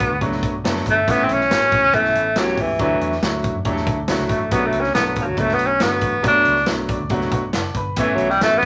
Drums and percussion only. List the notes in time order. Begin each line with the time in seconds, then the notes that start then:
0.00 kick
0.21 kick, closed hi-hat
0.32 snare
0.43 kick, closed hi-hat
0.65 snare, closed hi-hat
0.76 snare
0.86 kick, closed hi-hat
1.08 kick, closed hi-hat
1.29 closed hi-hat
1.40 snare
1.51 snare, closed hi-hat
1.71 kick, closed hi-hat
1.93 kick, closed hi-hat
2.05 snare
2.15 closed hi-hat
2.36 snare, closed hi-hat
2.58 kick, open hi-hat
2.79 kick, closed hi-hat
3.01 closed hi-hat
3.12 snare
3.22 snare, closed hi-hat
3.44 kick, closed hi-hat
3.65 kick, closed hi-hat
3.76 snare
3.87 kick, closed hi-hat
4.08 snare, closed hi-hat
4.19 snare
4.29 kick, closed hi-hat
4.51 kick, closed hi-hat
4.72 closed hi-hat
4.83 snare
4.95 snare, closed hi-hat
5.16 kick, closed hi-hat
5.37 kick, closed hi-hat
5.48 snare
5.59 closed hi-hat
5.80 snare, closed hi-hat
5.90 snare
6.01 kick, closed hi-hat
6.24 kick, closed hi-hat
6.45 closed hi-hat
6.56 snare
6.66 snare, closed hi-hat
6.88 kick, closed hi-hat
7.09 kick, closed hi-hat
7.21 snare
7.31 kick, closed hi-hat
7.53 snare, closed hi-hat
7.64 snare
7.74 kick, closed hi-hat
7.96 kick, closed hi-hat
8.18 closed hi-hat
8.30 snare
8.41 snare, closed hi-hat